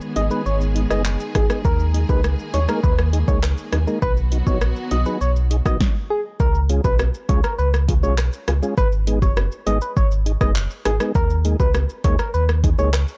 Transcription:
Already playing: D#3 G#3 B3 G#4
0.01 shaker
0.16 G#1 D#4 G#4 D#5, closed hi-hat, high bongo, low bongo, shaker
0.31 G#3 B3 D#4 G#4 B4, shaker
0.46 G#1 C#5, shaker
0.61 shaker
0.75 D#4 G#4, closed hi-hat, shaker
0.90 F#1 G#3 B3 D#4 G#4 D#5, cross-stick, shaker
1.05 clap, shaker
1.20 shaker
1.35 G#1 D#4 G#4, kick, cross-stick, closed hi-hat, high bongo, low bongo, shaker
1.50 G#3 B3 D#4 G#4, cross-stick, shaker
1.65 D#2 A#3 A#4, kick, shaker
1.80 shaker
1.94 D#4 G#4, closed hi-hat, shaker
2.09 C#2 G#3 A#3 D#4 G#4 B4, kick, high bongo, shaker
2.24 cross-stick, shaker
2.39 shaker
2.54 D#2 D#4 G#4 C#5, closed hi-hat, high bongo, low bongo, shaker
2.68 G#3 A#3 D#4 G#4 A#4, cross-stick, shaker
2.83 D#2 B4, kick, shaker
2.98 cross-stick, shaker
3.13 D#4 G#4, closed hi-hat, shaker
3.28 C#2 G#3 A#3 D#4 G#4 C#5, kick, shaker
3.43 cross-stick, clap, shaker
3.58 shaker
3.72 D#2 D#4 G#4, cross-stick, closed hi-hat, high bongo, low bongo, shaker
3.87 G#3 A#3 D#4 A#4, shaker
4.02 B1 F#3 B3 F#4 B4, kick, shaker
4.17 shaker
4.32 D#4 F#4, closed hi-hat, shaker
4.47 A#1 F#3 B3 D#4 F#4 C#5, kick, high bongo, shaker
4.61 cross-stick, shaker
4.76 shaker
4.91 B1 D#4 F#4 D#5, closed hi-hat, high bongo, low bongo, shaker
5.06 F#3 B3 D#4 G#4 B4, shaker
5.21 B1 C#5, shaker
5.36 shaker
5.51 D#4 G#4, closed hi-hat, shaker
5.65 A#1 F#3 B3 D#4 F#4 D#5, kick, cross-stick, high bongo, shaker
5.80 kick, snare
6.10 G#4
6.40 C#2 A#4, kick, shaker
6.55 shaker
6.69 G#3 C#4 F4 G#4, closed hi-hat, shaker
6.84 B1 B4, kick, high bongo, shaker
6.99 cross-stick, high bongo, shaker
7.14 shaker
7.29 C#2 G#3 C#4 F4 G#4 C#5, kick, closed hi-hat, low bongo, shaker
7.44 A#4, cross-stick, shaker
7.58 C#2 B4, shaker
7.74 cross-stick, shaker
7.88 F4 G#4, kick, closed hi-hat, shaker
8.03 B1 G#3 C#4 F4 G#4 C#5, high bongo, shaker
8.18 cross-stick, clap, shaker
8.33 shaker
8.48 C#2 F4 G#4, cross-stick, closed hi-hat, high bongo, low bongo, shaker
8.63 G#3 C#4 F4 G#4, shaker
8.77 G#1 B4, kick, shaker
8.92 shaker
9.07 G#3 B3 D#4 G#4, closed hi-hat, shaker
9.22 F#1 C#5, kick, high bongo, shaker
9.37 cross-stick, high bongo, shaker
9.52 shaker
9.66 G#1 G#3 B3 D#4 G#4 D#5, closed hi-hat, low bongo, shaker
9.81 B4, shaker
9.97 G#1 C#5, kick, shaker
10.11 shaker
10.26 D#4 G#4, closed hi-hat, shaker
10.41 F#1 G#3 B3 D#4 G#4 D#5, kick, cross-stick, high bongo, shaker
10.56 clap, shaker
10.70 shaker
10.85 G#1 D#4 G#4, cross-stick, closed hi-hat, high bongo, low bongo, shaker
11.00 G#3 B3 D#4 G#4, cross-stick, shaker
11.15 D#2 A#4, kick, shaker
11.30 shaker
11.45 G#3 A#3 D#4 G#4, closed hi-hat, shaker
11.60 C#2 B4, kick, high bongo, shaker
11.74 cross-stick, high bongo, shaker
11.89 shaker
12.04 D#2 G#3 A#3 D#4 G#4 C#5, kick, closed hi-hat, low bongo, shaker
12.19 A#4, cross-stick, shaker
12.34 D#2 B4, shaker
12.49 cross-stick, shaker
12.64 D#4 G#4, kick, closed hi-hat, shaker
12.78 C#2 G#3 A#3 D#4 G#4 C#5, high bongo, shaker
12.93 cross-stick, clap, shaker
13.08 shaker

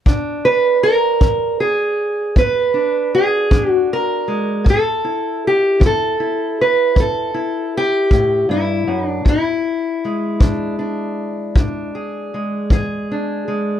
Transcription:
0.06 E2 D4, kick
0.45 B4
0.83 A#4
1.21 E3, kick
1.60 G#4
2.36 E2 B4, kick
2.74 D4
3.15 G#4
3.51 E3 D4, kick
3.71 F#4
3.93 A#4
4.28 G#3
4.64 A2, kick
4.70 A4
5.04 E4
5.47 G4
5.80 E3, kick
5.86 A4
6.20 E4
6.61 B4
6.95 A2, kick
7.00 A4
7.34 E4
7.77 G4
8.11 A2, kick
8.49 G2 E4
8.87 F#2
9.07 D4
9.25 E2 E4, kick
10.05 G#3
10.40 E3 D4, kick
10.79 D4
11.56 E2 D4, kick
11.95 G#4
12.34 G#3
12.70 E3 G#4, kick
13.11 D4
13.48 G#3

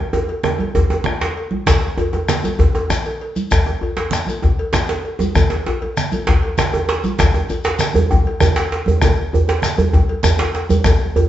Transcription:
0.13 cowbell, djembe slap, djembe tone
0.28 cowbell, djembe slap, high conga
0.43 bombo rim, high conga, djembe tone, low conga
0.59 bombo rim, cowbell, high conga, djembe tone
0.75 bombo low, djembe slap, djembe tone, djembe bass
0.90 bombo rim, cowbell, djembe tone
1.04 bombo rim, djembe tone, low conga
1.20 cowbell, djembe slap, high conga
1.37 cowbell
1.51 high conga, djembe tone
1.66 bombo rim, bombo low, cowbell, djembe slap, low conga, djembe bass, shekere
1.98 cowbell, djembe tone
2.13 cowbell, djembe slap, djembe tone, high conga
2.29 bombo rim, djembe slap, low conga, shekere
2.44 cowbell, high conga, djembe tone, shekere
2.59 bombo rim, bombo low, djembe slap, djembe tone, djembe bass
2.75 cowbell, djembe tone
2.90 bombo rim, djembe slap, djembe tone, low conga, shekere
3.06 cowbell, djembe slap
3.21 cowbell
3.36 high conga, shekere
3.51 bombo rim, bombo low, cowbell, djembe slap, low conga, djembe bass, shekere
3.67 djembe tone
3.81 cowbell, djembe tone
3.96 cowbell, djembe slap, high conga
4.11 bombo rim, djembe slap, low conga, shekere
4.27 cowbell, high conga, djembe tone, shekere
4.42 bombo rim, bombo low, djembe slap, djembe tone, djembe bass
4.59 cowbell
4.73 bombo rim, djembe slap, low conga, shekere
4.74 djembe slap, djembe tone
4.89 cowbell, djembe slap
5.05 cowbell
5.19 djembe tone, high conga
5.21 djembe tone, shekere
5.35 bombo rim, bombo low, cowbell, djembe slap, djembe bass, low conga, shekere
5.50 djembe slap
5.66 cowbell, djembe slap, djembe tone
5.82 cowbell, djembe slap, high conga
5.97 bombo rim, low conga, shekere
6.12 cowbell, high conga, djembe tone, shekere
6.27 bombo low, djembe slap, djembe bass
6.43 cowbell
6.58 bombo rim, djembe slap, djembe tone, low conga, shekere
6.73 cowbell, djembe slap, djembe tone
6.88 cowbell, djembe slap
7.04 djembe tone, high conga, shekere
7.19 bombo rim, bombo low, cowbell, djembe slap, high conga, low conga, djembe bass, shekere
7.34 djembe tone
7.49 bombo rim, cowbell, djembe slap, high conga, djembe tone, shekere
7.64 cowbell, djembe slap, shekere
7.79 bombo rim, djembe slap, low conga, shekere
7.94 cowbell, high conga, djembe tone, djembe bass
8.10 bombo rim, bombo low, djembe slap, high conga, djembe tone, djembe bass
8.26 bombo rim, cowbell, djembe slap, high conga
8.40 bombo rim, djembe tone, low conga, djembe bass, shekere
8.56 cowbell, djembe slap, shekere
8.72 cowbell, djembe slap
8.86 high conga, djembe bass
9.02 bombo rim, bombo low, cowbell, djembe slap, djembe tone, low conga, djembe bass, shekere
9.33 djembe tone, djembe bass
9.48 cowbell, djembe slap, high conga
9.62 bombo rim, djembe slap, low conga, shekere
9.78 cowbell, high conga, djembe tone, djembe bass
9.93 bombo rim, bombo low, djembe slap, djembe tone, djembe bass
10.09 cowbell
10.23 bombo rim, djembe slap, djembe tone, low conga, djembe bass, shekere
10.39 cowbell, djembe slap
10.55 cowbell, djembe slap
10.69 high conga, djembe bass, shekere
10.84 bombo rim, bombo low, cowbell, djembe slap, djembe tone, low conga, djembe bass, shekere
11.16 cowbell, djembe tone, djembe bass

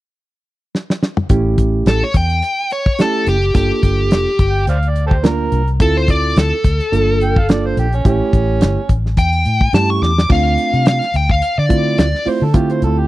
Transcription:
0.75 snare
0.90 snare
1.03 snare
1.17 mid tom
1.29 A1 A3 C#4 E4 G4, kick, closed hi-hat
1.58 kick, closed hi-hat
1.86 A1 A4, snare, closed hi-hat
2.04 C#5
2.14 E2 G5, kick, closed hi-hat
2.30 closed hi-hat
2.42 closed hi-hat
2.70 C#5, closed hi-hat
2.86 kick
2.99 A3 C#4 E4 G4 A4, snare, closed hi-hat
3.27 F#1 G4, closed hi-hat
3.42 closed hi-hat
3.54 G1 A#3 D4 F4 G4 A4, kick, closed hi-hat
3.83 G1, kick, closed hi-hat
4.11 F1, snare, closed hi-hat
4.39 G1, kick, closed hi-hat
4.50 G5
4.67 D2 C5 D5 F5, closed hi-hat
4.83 closed hi-hat
4.89 D5
4.96 closed hi-hat
5.07 G4 A4 C5, kick
5.23 A#3 D4 F4 A#4, snare, closed hi-hat
5.52 C2, closed hi-hat
5.68 closed hi-hat
5.80 D2 C4 E4 F4 A4, kick, closed hi-hat
5.97 C5
6.08 D5, kick, closed hi-hat
6.36 D2 A4, snare, closed hi-hat
6.64 D2, kick, closed hi-hat
6.80 closed hi-hat
6.92 G1 A#3 D4 F4 A4, closed hi-hat
7.21 G5, closed hi-hat
7.36 F5, kick
7.49 A#3 D4 F4 A4 D5, snare, closed hi-hat
7.66 C5
7.77 A#1 G4, closed hi-hat
7.93 C#4, closed hi-hat
8.05 A1 A3 C#4 E4 G4, kick, closed hi-hat
8.33 A1, kick, closed hi-hat
8.61 G1, snare, closed hi-hat
8.89 A1, kick, closed hi-hat
9.06 snare
9.17 E2 G5, kick, closed hi-hat
9.33 closed hi-hat
9.45 A2, closed hi-hat
9.61 kick
9.73 G2 A3 C#4 E4 G4 A5, snare, closed hi-hat
9.90 C#6
10.02 E2 D6, snare
10.18 snare
10.29 D2 A3 C4 D4 F4 F5, kick, crash
10.58 closed hi-hat
10.74 C3, closed hi-hat
10.86 F5, snare, closed hi-hat
11.02 snare, closed hi-hat
11.14 D2 G5, closed hi-hat
11.29 F5, kick
11.42 closed hi-hat
11.58 D3 D5
11.69 A3 C4 E4 F4, kick, closed hi-hat
11.98 D2 D5, snare, closed hi-hat
12.15 snare
12.26 A3 C4 E4 F4 C5, muted fingered electric bass stroke, open hi-hat
12.42 D3 A4
12.54 A3 C4 E4 F4 G4, kick, closed hi-hat
12.70 C5, closed hi-hat
12.82 D2 A4, closed hi-hat
12.99 G4

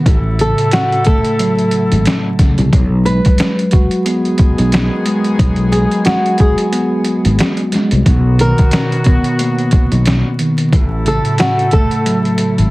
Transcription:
0.06 A1 A2 F#3 A3 E4 A4, kick, closed hi-hat
0.39 C#3 A4, closed hi-hat
0.58 closed hi-hat
0.71 F#4, snare, closed hi-hat
0.92 closed hi-hat
1.04 A3 A4, kick, closed hi-hat
1.24 closed hi-hat
1.39 F#3, closed hi-hat
1.59 closed hi-hat
1.71 closed hi-hat
1.92 G#1, closed hi-hat
2.06 snare, closed hi-hat
2.39 C#3, kick, snare, closed hi-hat
2.58 C2, closed hi-hat
2.73 B1 F#3, kick, closed hi-hat
3.05 B4, closed hi-hat
3.25 kick, closed hi-hat
3.38 snare, closed hi-hat
3.59 closed hi-hat
3.71 F#4, kick, closed hi-hat
3.91 closed hi-hat
4.04 D#3 G#3 B3 G#4, closed hi-hat
4.25 closed hi-hat
4.38 kick, closed hi-hat
4.58 B1, closed hi-hat
4.72 snare, closed hi-hat
5.05 G#3, closed hi-hat
5.24 closed hi-hat
5.39 B1 F#3, kick, closed hi-hat
5.56 closed hi-hat
5.72 G#3 G#4, closed hi-hat
5.91 closed hi-hat
6.05 F#4, snare, closed hi-hat
6.26 closed hi-hat
6.38 F#4 G#4, kick, closed hi-hat
6.58 closed hi-hat
6.72 B3, closed hi-hat
7.05 closed hi-hat
7.25 G#1, closed hi-hat
7.39 snare, closed hi-hat
7.57 closed hi-hat
7.72 G#3, snare, closed hi-hat
7.91 C2, closed hi-hat
8.05 B1 B2 D#3 F#3 B3 F#4, kick, closed hi-hat
8.39 A#4, closed hi-hat
8.58 kick, closed hi-hat
8.71 snare, closed hi-hat
8.92 closed hi-hat
9.04 B3, kick, closed hi-hat
9.24 closed hi-hat
9.39 A#3, closed hi-hat
9.58 closed hi-hat
9.71 kick, closed hi-hat
9.92 B1, closed hi-hat
10.05 snare, closed hi-hat
10.39 D#3, closed hi-hat
10.58 closed hi-hat
10.73 A1 A2 F#3 A3 E4 A4, kick, closed hi-hat
11.06 C#3 A4, closed hi-hat
11.25 closed hi-hat
11.38 F#4, snare, closed hi-hat
11.59 closed hi-hat
11.71 A3 A4, kick, closed hi-hat
11.91 closed hi-hat
12.06 F#3, closed hi-hat
12.25 closed hi-hat
12.38 closed hi-hat
12.58 G#1, closed hi-hat

